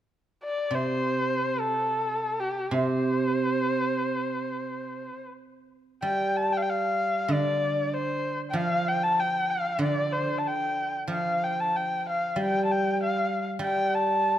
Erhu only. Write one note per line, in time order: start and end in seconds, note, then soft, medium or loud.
0.44 0.76 D5 medium
0.75 1.62 C5 medium
1.61 2.41 A4 medium
2.40 2.75 G4 medium
2.74 5.25 C5 medium
6.03 6.38 G5 medium
6.37 6.54 A5 medium
6.52 6.59 G5 medium
6.57 6.64 F5 medium
6.62 6.71 G5 medium
6.69 7.34 F5 medium
7.33 7.87 D5 medium
7.87 7.95 D5 medium
7.94 8.40 C5 medium
8.50 8.57 G5 medium
8.56 8.89 F5 medium
8.88 9.05 G5 medium
9.03 9.21 A5 medium
9.20 9.51 G5 medium
9.50 9.82 F5 medium
9.83 10.14 D5 medium
10.12 10.40 C5 medium
10.38 10.49 A5 medium
10.47 10.95 G5 medium
11.12 11.46 F5 medium
11.44 11.62 G5 medium
11.60 11.77 A5 medium
11.76 12.07 G5 medium
12.10 12.37 F5 medium
12.43 12.63 G5 medium
12.65 12.73 A5 medium
12.72 13.02 G5 medium
13.03 13.45 F5 medium
13.64 13.96 G5 medium
13.95 14.39 A5 medium